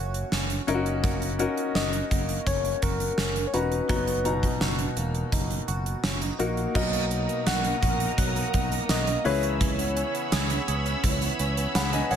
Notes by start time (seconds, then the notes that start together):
Already playing: F#1 E3 A#3 C#4 E4 F#4 A#4 C#5
0.14 closed hi-hat
0.32 F#1 C#4, snare
0.50 closed hi-hat
0.67 F#1 A#3 C#4 D#4 E4 A#4, closed hi-hat
0.74 F#4
0.86 closed hi-hat
1.04 A#3 F#4, kick, closed hi-hat
1.22 closed hi-hat
1.39 C#4 D#4 F#4 A#4, closed hi-hat
1.57 closed hi-hat
1.75 F#1 F#4 D#5, snare
1.93 closed hi-hat
2.11 F#1 A#3, kick, closed hi-hat
2.29 closed hi-hat
2.47 F#1 C#4 C#5, kick, closed hi-hat
2.65 closed hi-hat
2.82 F#1 F#4 A#4, kick, closed hi-hat
3.00 closed hi-hat
3.18 F#1 C#4, snare
3.36 closed hi-hat
3.47 C#5
3.53 E1 C#4 D#4 F#4 B4 A#5, closed hi-hat
3.72 closed hi-hat
3.89 F#1 F#3 B3 D#4 F#4 A#5, kick, closed hi-hat
4.07 closed hi-hat
4.25 B2 D#4 F#4 A#5, closed hi-hat
4.43 kick, closed hi-hat
4.61 F#1 F#4, snare
4.79 closed hi-hat
4.97 E1 A#3, closed hi-hat
5.15 closed hi-hat
5.32 F#1 D#4, kick, closed hi-hat
5.50 closed hi-hat
5.68 F#1 F#4, closed hi-hat
5.86 closed hi-hat
6.04 F#1 C#4, snare
6.21 D#4, closed hi-hat
6.39 A#1 A#3 D#4 F#4 A#4, closed hi-hat
6.57 closed hi-hat
6.75 B1 B2 F#3 A#3 D#4 F#4 A#4 D#5 A#5 D#6, kick, crash
6.93 A#3, closed hi-hat
7.11 D#4, closed hi-hat
7.29 A#3, closed hi-hat
7.46 B1 F#4 F#5, snare, closed hi-hat
7.64 A#3, closed hi-hat
7.82 A#1 F#4, kick, closed hi-hat
8.00 D#4, closed hi-hat
8.18 B1 F#3 F#5, kick, closed hi-hat
8.36 A#3, closed hi-hat
8.54 B1 D#4, kick, closed hi-hat
8.71 A#3, closed hi-hat
8.89 B1 F#4 D#5, snare, closed hi-hat
9.07 A#3, closed hi-hat
9.24 C#2 C#3 E3 C#4 E4 G#4 B4 C#5 B5 E6, open hi-hat
9.43 C#4, closed hi-hat
9.61 E3, kick, closed hi-hat
9.79 B3, closed hi-hat
9.96 C#4, closed hi-hat
10.14 B3, closed hi-hat
10.32 C#2 G#4, snare, closed hi-hat
10.50 B3, closed hi-hat
10.68 C#2 G#4, closed hi-hat
10.86 C#4, closed hi-hat
11.04 C#2 E3, kick, closed hi-hat
11.22 B3, closed hi-hat
11.39 C#2 C#4, closed hi-hat
11.57 B3, closed hi-hat
11.75 C#2 G#4 F#5 B5, snare, closed hi-hat
11.93 B3 D#5 G#5, closed hi-hat
12.11 A#1 G#4 C#5 F#5, open hi-hat